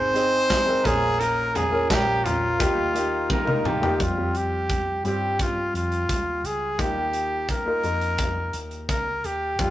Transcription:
0.00 0.81 G#1 loud
0.00 0.15 G#2 medium
0.00 0.88 G#2 medium
0.00 0.15 D#3 medium
0.00 0.15 G#3 medium
0.00 0.14 C4 medium
0.00 0.13 D#4 medium
0.00 0.15 D#4 medium
0.00 0.12 G#4 medium
0.00 0.15 G#4 medium
0.00 0.87 C5 loud
0.00 0.88 D#5 medium
0.13 0.47 G#3 soft
0.13 0.58 C4 medium
0.13 0.48 C4 soft
0.13 0.50 D#4 medium
0.13 0.59 D#4 medium
0.13 0.49 G#4 medium
0.13 0.59 G#4 medium
0.13 0.59 C5 medium
0.13 closed hi-hat medium
0.48 0.84 G#3 medium
0.48 0.85 C4 medium
0.48 0.85 D#4 medium
0.48 0.83 G#4 medium
0.48 kick medium
0.48 snare loud
0.48 clap medium
0.48 closed hi-hat medium
0.66 0.84 C4 medium
0.66 0.84 D#4 medium
0.66 0.85 G#4 medium
0.66 0.84 A#4 medium
0.83 1.86 A#1 medium
0.83 1.86 A#2 medium
0.83 1.57 A#3 medium
0.83 1.57 C#4 medium
0.83 1.19 C#4 soft
0.83 1.19 F4 medium
0.83 1.58 F4 medium
0.83 1.21 G#4 medium
0.83 1.19 A#4 medium
0.83 1.58 A#4 medium
0.83 kick loud
0.83 closed hi-hat medium
0.83 floor tom medium
1.19 1.55 A#2 medium
1.19 1.55 F3 medium
1.19 1.55 C#4 medium
1.19 1.54 F4 medium
1.19 1.57 A#4 medium
1.19 1.53 A#4 medium
1.19 closed hi-hat medium
1.54 1.89 C#4 soft
1.54 1.90 F4 soft
1.54 1.90 G#4 medium
1.54 1.90 A#4 medium
1.54 closed hi-hat medium
1.54 floor tom medium
1.71 2.58 A#3 medium
1.71 2.60 C#4 medium
1.71 2.59 F4 medium
1.71 2.60 A#4 medium
1.89 2.56 A#1 medium
1.89 2.25 F3 medium
1.89 2.25 C#4 medium
1.89 2.24 F4 medium
1.89 2.26 G4 medium
1.89 2.22 A#4 medium
1.89 kick medium
1.89 snare medium
1.89 clap medium
1.89 closed hi-hat medium
2.24 2.60 C#4 soft
2.24 3.30 F4 medium
2.24 2.60 F4 soft
2.24 2.59 A#4 medium
2.24 closed hi-hat medium
2.24 floor tom medium
2.59 3.26 D#2 loud
2.59 2.95 D#3 medium
2.59 3.61 D#3 medium
2.59 2.95 G3 medium
2.59 2.89 A#3 medium
2.59 2.95 A#3 medium
2.59 2.89 D#4 medium
2.59 2.94 D#4 medium
2.59 2.89 F4 medium
2.59 2.93 F4 medium
2.59 2.90 G4 medium
2.59 kick loud
2.59 closed hi-hat medium
2.94 3.38 A#3 medium
2.94 3.29 A#3 soft
2.94 3.38 D#4 medium
2.94 3.30 D#4 soft
2.94 3.29 F4 medium
2.94 3.39 F4 medium
2.94 3.39 G4 medium
2.94 closed hi-hat medium
3.29 3.65 G3 medium
3.29 3.65 A#3 medium
3.29 3.65 D#4 medium
3.29 3.63 F4 medium
3.29 3.68 A#4 medium
3.29 kick loud
3.29 high tom medium
3.45 3.75 A#3 medium
3.45 3.76 D#4 medium
3.45 3.76 F4 medium
3.45 3.76 A#4 medium
3.45 mid tom medium
3.64 3.97 D#2 medium
3.64 4.01 A#3 soft
3.64 4.00 D#4 soft
3.64 4.00 F4 medium
3.64 4.03 G4 medium
3.64 mid tom medium
3.81 3.96 A#3 medium
3.81 3.96 D#4 medium
3.81 3.97 F4 medium
3.81 3.97 G4 medium
3.81 floor tom medium
3.99 5.01 F2 medium
3.99 4.14 G3 medium
3.99 4.15 C4 medium
3.99 4.15 F4 medium
3.99 4.38 F4 medium
3.99 4.15 G4 medium
3.99 kick medium
3.99 closed hi-hat medium
4.17 4.90 G3 medium
4.17 4.90 C4 soft
4.17 4.91 F4 soft
4.17 4.91 G4 medium
4.35 5.05 G4 medium
4.35 closed hi-hat medium
4.70 kick medium
4.70 closed hi-hat medium
5.04 5.70 G2 medium
5.04 6.21 G3 medium
5.04 6.21 C4 medium
5.04 6.21 F4 medium
5.04 5.43 G4 medium
5.04 6.22 G4 medium
5.04 closed hi-hat medium
5.39 5.76 F4 medium
5.39 kick medium
5.39 closed hi-hat medium
5.74 6.07 F2 medium
5.74 6.47 F4 medium
5.74 closed hi-hat medium
5.92 closed hi-hat soft
6.09 6.42 D#2 medium
6.09 kick medium
6.09 closed hi-hat medium
6.44 6.77 C#2 medium
6.44 6.81 G#4 medium
6.44 closed hi-hat medium
6.78 7.80 D#2 medium
6.78 7.80 D#3 medium
6.78 7.51 A#3 medium
6.78 7.52 D#4 medium
6.78 7.52 F4 soft
6.78 7.50 G4 medium
6.78 7.53 G4 medium
6.78 kick medium
6.78 closed hi-hat medium
7.13 closed hi-hat medium
7.49 8.59 A#4 medium
7.49 kick medium
7.49 closed hi-hat medium
7.65 7.81 A#3 medium
7.65 7.81 D#4 medium
7.65 7.82 F4 medium
7.65 7.82 A#4 medium
7.83 8.50 F2 medium
7.83 9.00 A#3 medium
7.83 9.00 D#4 medium
7.83 9.00 F4 medium
7.83 9.01 A#4 medium
7.83 closed hi-hat soft
8.01 closed hi-hat soft
8.18 kick loud
8.18 closed hi-hat medium
8.53 8.87 D#2 medium
8.53 closed hi-hat medium
8.71 closed hi-hat soft
8.89 9.22 C#2 medium
8.89 9.27 A#4 medium
8.89 kick medium
8.89 closed hi-hat medium
9.24 9.57 D#2 medium
9.24 9.62 G4 medium
9.24 closed hi-hat medium
9.59 9.70 F2 medium
9.59 9.70 G3 medium
9.59 9.70 C4 medium
9.59 9.70 F4 medium
9.59 9.70 G4 medium
9.59 kick medium
9.59 closed hi-hat medium

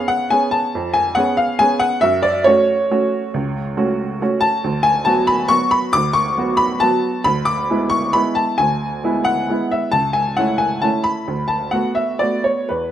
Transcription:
0.00 0.27 B3 soft
0.00 0.27 C#4 soft
0.00 0.27 G#4 soft
0.08 0.30 F#5 medium
0.30 0.70 B3 soft
0.30 0.71 C#4 soft
0.30 0.71 G#4 soft
0.30 0.52 G#5 medium
0.51 0.94 A5 medium
0.75 1.16 F2 medium
0.94 1.16 G#5 medium
1.15 1.56 B3 soft
1.15 1.56 C#4 soft
1.15 1.57 G#4 soft
1.15 1.37 F#5 medium
1.37 1.59 F5 medium
1.59 1.99 B3 soft
1.59 1.99 C#4 soft
1.59 1.99 G#4 medium
1.59 1.81 G#5 loud
1.79 2.02 F#5 medium
2.01 2.44 F#2 medium
2.01 2.23 E5 medium
2.23 2.45 D5 medium
2.44 2.86 A3 soft
2.44 2.86 C#4 soft
2.44 2.86 F#4 medium
2.44 3.97 C#5 medium
2.91 3.30 A3 soft
2.91 3.30 C#4 soft
2.91 3.30 F#4 medium
3.34 3.75 C#2 medium
3.77 4.17 A3 soft
3.77 4.17 C#4 soft
3.77 4.17 F#4 medium
4.21 4.60 A3 soft
4.21 4.60 C#4 soft
4.21 4.60 F#4 soft
4.41 4.84 A5 medium
4.64 5.05 D2 medium
4.83 5.05 G#5 medium
5.05 5.46 F#3 soft
5.05 5.46 B3 soft
5.05 5.46 F#4 medium
5.05 5.27 A5 medium
5.27 5.49 B5 loud
5.49 5.89 F#3 soft
5.49 5.89 B3 soft
5.49 5.89 F#4 soft
5.49 5.71 C#6 loud
5.71 5.93 B5 medium
5.93 6.36 D2 medium
5.93 6.15 D6 loud
6.13 6.59 C#6 loud
6.38 6.79 F#3 soft
6.38 6.79 B3 soft
6.38 6.79 F#4 soft
6.57 6.81 B5 loud
6.80 7.22 F#3 soft
6.80 7.22 B3 soft
6.80 7.23 F#4 soft
6.80 7.25 A5 loud
7.24 7.68 D2 medium
7.24 7.47 B5 loud
7.45 7.91 D6 medium
7.70 8.11 G#3 soft
7.70 8.11 B3 soft
7.70 8.11 E4 soft
7.90 8.13 C#6 loud
8.13 8.55 G#3 soft
8.13 8.55 B3 soft
8.13 8.55 E4 soft
8.13 8.36 B5 medium
8.35 8.58 A5 medium
8.58 9.03 D2 medium
8.58 9.26 G#5 medium
9.04 9.46 G#3 soft
9.04 9.46 B3 soft
9.04 9.46 E4 soft
9.25 9.71 F#5 medium
9.49 9.89 G#3 soft
9.49 9.90 B3 soft
9.49 9.90 E4 soft
9.71 9.93 E5 medium
9.92 10.35 C#2 medium
9.92 10.14 A5 medium
10.13 10.36 G#5 medium
10.37 10.79 A3 soft
10.37 10.80 C#4 soft
10.37 10.80 E4 soft
10.37 10.60 F#5 medium
10.58 10.82 G#5 medium
10.82 11.23 A3 soft
10.82 11.23 C#4 soft
10.82 11.24 E4 soft
10.82 11.05 A5 medium
11.04 11.48 B5 medium
11.28 11.71 D2 soft
11.48 11.71 A5 medium
11.71 12.16 A3 soft
11.71 12.16 B3 soft
11.71 12.17 F#4 soft
11.71 11.95 F#5 medium
11.95 12.19 E5 medium
12.19 12.64 A3 soft
12.19 12.65 B3 soft
12.19 12.65 F#4 soft
12.19 12.44 D5 medium
12.44 12.68 C#5 medium
12.69 12.92 E2 soft
12.69 12.92 B4 medium

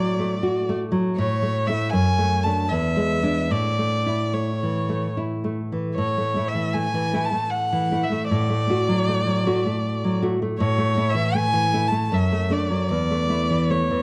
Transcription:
0.00 1.13 A2 soft
0.00 0.34 F#3 soft
0.00 0.75 D5 medium
0.19 0.58 A3 soft
0.43 0.82 F#4 soft
0.69 1.08 A3 soft
0.92 1.17 F#3 soft
1.17 1.90 A2 medium
1.17 1.69 C#5 medium
1.42 1.68 A3 soft
1.67 1.91 A3 soft
1.67 1.91 E4 soft
1.67 1.91 E5 medium
1.92 2.68 F#2 medium
1.92 2.45 G#5 medium
2.18 2.44 A3 soft
2.44 2.68 A3 soft
2.44 2.69 D4 soft
2.44 2.71 A5 medium
2.69 3.49 E2 soft
2.69 3.53 E5 medium
2.97 3.22 G#3 soft
3.23 3.47 G#3 soft
3.23 3.47 D4 soft
3.51 5.94 A2 soft
3.51 4.35 D5 medium
3.79 4.22 A3 soft
4.06 4.51 E4 soft
4.33 4.78 A3 soft
4.33 5.17 C#5 soft
4.63 5.07 E3 soft
4.89 5.33 A3 soft
5.17 5.60 E4 soft
5.44 5.87 A3 soft
5.72 5.98 E3 soft
5.96 8.27 A2 soft
5.96 6.49 C#5 medium
6.18 6.35 A3 soft
6.36 6.54 A3 soft
6.36 6.54 E4 soft
6.48 6.75 E5 soft
6.55 6.86 E3 soft
6.74 7.06 A3 soft
6.74 7.26 G#5 medium
6.94 7.25 E3 soft
7.13 7.31 A3 soft
7.13 7.31 E4 soft
7.25 7.52 A5 medium
7.33 7.91 A3 soft
7.50 8.05 F#5 medium
7.72 8.04 E3 soft
7.92 8.09 A3 soft
7.92 8.10 E4 soft
8.04 8.29 E5 soft
8.11 8.31 A3 soft
8.30 10.56 A2 soft
8.30 10.18 D5 medium
8.50 8.68 A3 soft
8.69 8.87 A3 soft
8.69 8.88 F#4 soft
8.89 9.20 F#3 soft
9.08 9.40 A3 soft
9.26 9.58 F#3 soft
9.46 9.64 A3 soft
9.46 9.64 F#4 soft
9.66 10.22 A3 soft
10.04 10.34 F#3 soft
10.22 10.40 A3 soft
10.22 10.39 F#4 soft
10.42 10.60 A3 soft
10.59 12.08 A2 medium
10.59 11.11 C#5 medium
10.78 10.96 A3 soft
10.97 11.14 A3 soft
10.97 11.14 E4 soft
11.10 11.37 E5 medium
11.15 11.46 E3 soft
11.35 11.65 A3 soft
11.35 11.89 G#5 medium
11.53 11.84 E3 soft
11.73 11.91 A3 soft
11.73 11.91 E4 soft
11.88 12.15 A5 medium
11.92 12.11 A3 soft
12.12 12.88 F#2 medium
12.12 12.54 E5 medium
12.32 12.49 A3 soft
12.50 12.68 A3 soft
12.50 12.68 D4 soft
12.50 12.90 D5 medium
12.70 12.90 F#3 soft
12.91 14.02 E2 soft
12.91 13.72 D5 medium
13.11 13.28 A3 soft
13.29 13.47 A3 soft
13.29 13.48 E4 soft
13.51 13.82 E3 soft
13.70 14.01 A3 soft
13.70 14.02 C#5 soft
13.91 14.02 E3 soft

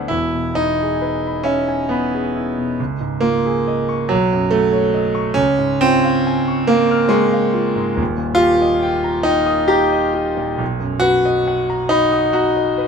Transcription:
0.00 0.11 D2 medium
0.00 0.12 A2 soft
0.00 0.12 B3 medium
0.00 0.12 D4 medium
0.00 0.08 E4 soft
0.00 0.11 A4 soft
0.00 0.12 C5 soft
0.00 0.12 F#5 soft
0.08 2.76 E1 soft
0.08 2.76 E2 soft
0.08 0.55 E4 medium
0.34 0.70 B2 soft
0.55 1.46 D#4 loud
0.55 0.93 E4 soft
0.83 1.17 G#4 soft
1.02 1.37 B4 soft
1.27 1.61 B5 soft
1.43 1.89 C#4 loud
1.43 1.81 E5 medium
1.68 2.04 G#5 soft
1.89 2.78 B3 medium
1.89 2.26 B5 soft
2.14 2.49 G#4 soft
2.35 2.71 E4 soft
2.58 2.79 B2 soft
2.80 4.08 C#2 medium
3.00 3.37 G#2 soft
3.20 4.10 A#3 loud
3.20 3.58 F4 soft
3.46 3.81 G#4 medium
3.68 4.02 D#5 medium
3.89 4.11 C#6 medium
4.09 5.35 B1 medium
4.09 4.52 F#3 loud
4.33 4.67 F#2 medium
4.51 5.38 A3 loud
4.51 4.87 F#4 soft
4.72 5.08 C#5 medium
4.94 5.29 D#5 soft
5.15 5.38 C#6 medium
5.34 7.95 C#2 medium
5.34 5.81 C#4 loud
5.59 5.95 G#2 soft
5.81 6.70 C4 loud
5.81 6.18 F4 medium
6.04 6.40 F5 medium
6.27 6.62 G#5 medium
6.48 6.84 C#6 medium
6.67 7.13 A#3 loud
6.67 7.05 F5 medium
6.91 7.26 F6 medium
7.09 7.97 G#3 loud
7.09 7.47 C#6 medium
7.32 7.68 F5 medium
7.53 7.90 F4 medium
7.75 7.99 G#2 soft
7.96 10.55 D#1 medium
7.96 10.55 D#2 medium
8.18 8.55 A#2 soft
8.35 9.26 F4 loud
8.35 8.75 G4 medium
8.62 8.98 D#5 medium
8.83 9.20 G5 medium
9.04 9.41 A#5 medium
9.23 9.70 D#4 loud
9.23 9.63 G5 medium
9.46 9.84 D#6 medium
9.68 10.13 G4 loud
9.68 10.06 A#5 medium
9.92 10.29 D#5 medium
10.14 10.51 G4 medium
10.37 10.60 A#2 soft
10.58 12.88 B1 medium
10.80 11.16 F#2 soft
11.00 11.89 F#4 loud
11.00 11.38 B4 medium
11.25 11.60 D#5 medium
11.48 11.83 F#5 medium
11.70 12.05 A#5 medium
11.89 12.34 D#4 loud
11.89 12.26 B5 medium
12.12 12.48 D#6 medium
12.33 12.88 F#4 medium
12.33 12.70 A#5 medium
12.57 12.88 D#5 soft
12.78 12.88 B4 medium

